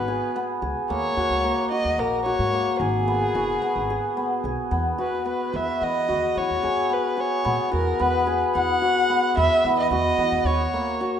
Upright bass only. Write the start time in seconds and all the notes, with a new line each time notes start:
Already playing: G#1
0.62 C#2
0.90 D#2
1.17 D#2
1.30 C#2
1.85 D#2
1.98 A#1
2.39 G#2
2.80 G#1
3.35 F#1
3.76 G#1
4.44 B1
4.71 E2
5.54 E2
5.82 E3
6.10 E2
6.37 E3
6.51 E2
6.64 F#2
7.46 A#2
7.73 E2
8.01 E2
8.55 E2
9.37 E2
9.65 E3
9.91 E2
10.18 E3
10.32 E2
10.45 D#2